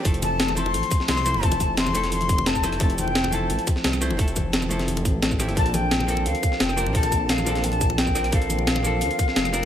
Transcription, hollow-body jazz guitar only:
X:1
M:4/4
L:1/8
Q:1/4=174
K:F
V:1 name="Hollow-body jazz guitar"
[F,A,CEA]3 [F,A,CEA]4 [F,A,CEc] | [F,A,CEA]3 [F,A,CEA]4 [F,A,CEc] | [F,A,CEA]3 [F,A,CEA]4 [F,A,CEc] | [F,A,CEA]3 [F,A,CEA]4 [F,A,CEG] |
[F,B,CDA]3 [F,B,CDA]4 [F,B,CDB] | [F,B,CDA]3 [F,B,CDA]4 [F,B,CDB] | [F,B,CDA]3 [F,B,CDA]4 [F,B,CDB] |]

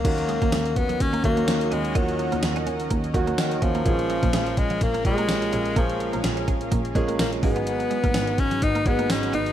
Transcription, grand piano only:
X:1
M:4/4
L:1/8
Q:"Swing 16ths" 1/4=126
K:Ebm
V:1 name="Grand piano"
[E,G,B,DG]3 z2 [E,G,B,DG]2 z | [E,G,B,DFG]3 z2 [E,G,B,DG]2 z | [F,A,B,CDA]3 z2 [F,A,B,D=GA]2 z | [F,A,B,DA]3 z2 [F,A,B,DA]2 [G,A,CEA]- |
[G,A,CEA]2 z3 [G,A,CEA]2 z |]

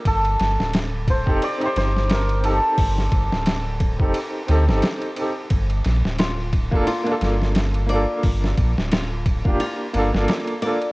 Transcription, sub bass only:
X:1
M:4/4
L:1/16
Q:"Swing 16ths" 1/4=88
K:Gm
V:1 name="Sub bass" clef=bass
G,,,2 G,,, D,,,4 F,,, z2 G,,,4- G,,, z | G,,,2 G,,, D,,,4 F,,, z2 D,, G,,, z4 | G,,,2 B,,, D,,,4 F,,, z2 G,,,4- G,,, z | G,,,2 B,,, D,,,4 F,,, z2 G,,, G,,, z4 |]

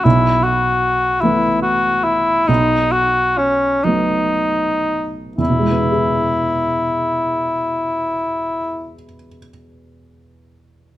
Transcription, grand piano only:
X:1
M:12/8
L:1/8
Q:3/8=43
K:E
V:1 name="Grand piano" clef=bass
B,,,3 [E,A,B,]3 B,,,3 [F,A,B,]3 | [E,,B,,G,B,EG]12 |]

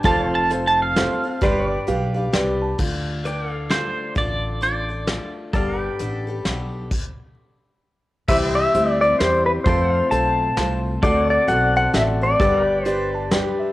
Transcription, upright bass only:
X:1
M:3/4
L:1/8
Q:"Swing" 1/4=131
K:Ddor
V:1 name="Upright bass" clef=bass
F,,,6 | G,,,2 B,,,2 C,,2 | D,,6 | A,,,6 |
G,,,2 A,,,2 B,,,2 | z6 | C,,2 D,,2 E,,2 | F,,2 B,,,2 C,,2 |
D,,2 B,,,2 A,,,2 | G,,,6 |]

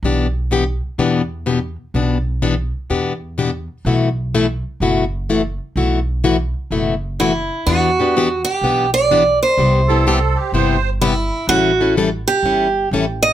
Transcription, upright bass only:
X:1
M:4/4
L:1/8
Q:"Swing" 1/4=126
K:Em
V:1 name="Upright bass" clef=bass
B,,,4 E,,4 | B,,,4 E,,4 | B,,,4 F,,,4 | B,,,4 F,,,4 |
E,,4 B,,,4 | C,,4 G,,,4 | A,,,4 G,,,2 A,,,2 |]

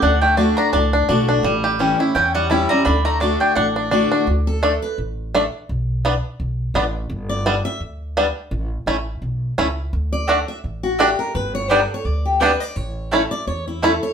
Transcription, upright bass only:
X:1
M:4/4
L:1/8
Q:"Swing" 1/4=170
K:D
V:1 name="Upright bass" clef=bass
D,,4 C,,2 B,,,2 | A,,,4 E,,4 | D,,4 A,,,4 | D,,4 A,,,4 |
B,,,4 B,,,2 A,,,2 | G,,,4 D,,4 | A,,,2 A,,,2 B,,,2 C,,2 | D,,4 A,,,4 |
G,,,4 D,,4 | A,,,4 E,,4 |]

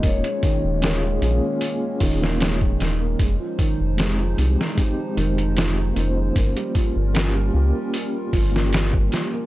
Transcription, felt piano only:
X:1
M:4/4
L:1/16
Q:"Swing 16ths" 1/4=76
K:Fm
V:1 name="Felt piano" clef=bass
B, A, E, z B, A, z4 E, B, A,2 E, B, | A, F, E, z A, F, z4 E, A, F,2 E, A, | B, G, F, z B, G, z4 F, B, G,2 F, B, |]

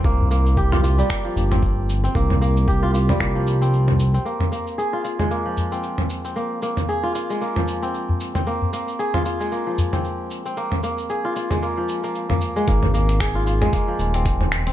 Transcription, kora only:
X:1
M:4/4
L:1/16
Q:"Swing 16ths" 1/4=114
K:Cphr
V:1 name="Kora"
B, z B,2 G F F G, B, F,2 C z3 C | B, z B,2 G F F G, B, F,2 C z3 C | B, z B,2 A F F A, B, F,2 C z3 C | B, z B,2 A F F A, B, F,2 C z3 C |
B, z B,2 A F F A, B, F,2 C z3 C | B, z B,2 A F F A, B, F, z B, z B, z A, | B, z B,2 A F F A, B, F,2 C z3 C |]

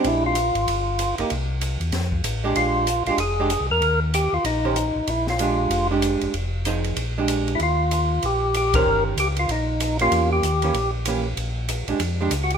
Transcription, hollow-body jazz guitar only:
X:1
M:4/4
L:1/8
Q:"Swing" 1/4=191
K:Bbmix
V:1 name="Hollow-body jazz guitar"
[A,DG]2 z4 z [B,EG] | z6 z [A,DG]- | [A,DG]2 z [A,DG] z [A,DG] z2 | z4 z [E,_DGc] z2 |
z2 [A,DG]3 [A,DG]3 | z2 [F,CEA]2 z [A,DG]3 | z6 z [E,_DGc]- | [E,_DGc]2 z4 z [B,DG]- |
[B,_DG]2 z [=E,B,^CG] z2 [E,B,CG] z | z3 [A,DG] z [A,DG] z2 |]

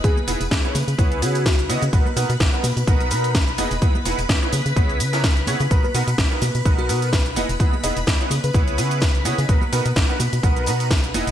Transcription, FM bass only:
X:1
M:4/4
L:1/16
Q:"Swing 16ths" 1/4=127
K:B
V:1 name="FM bass" clef=bass
E,, z E,,, E,,, E,, z C, C, C,,2 C,2 C,,2 C, C, | B,,, z B,, B,, B,,, z B,, B,, B,,,2 B,,2 B,,,2 E,,, E,,, | E,, z E,,, E,,, E,, z C, C, C,,2 C,2 C,,2 C, C, | B,,, z B,, B,, B,,, z B,, B,, B,,,2 B,,2 B,,,2 E,,, E,,, |
E,, z E,,, E,,, E,, z C, C, C,,2 C,2 C,,2 C, C, | B,,, z B,, B,, B,,, z B,, B,, B,,,2 B,,2 B,,,2 E,,, E,,, |]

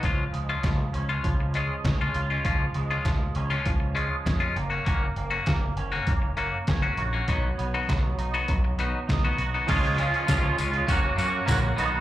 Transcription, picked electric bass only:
X:1
M:4/4
L:1/8
Q:1/4=99
K:Dbmix
V:1 name="Picked electric bass" clef=bass
D,, D,, D,, D,, D,,2 D,, D,, | D,, D,, D,, D,, D,,2 F,, G,,, | G,,, G,,, G,,, G,,, G,,,2 G,,, B,,, | C,, C,, C,, C,, C,,2 C,, C,, |
D,,2 D,, D,, G,,, G,, B,,, C,, |]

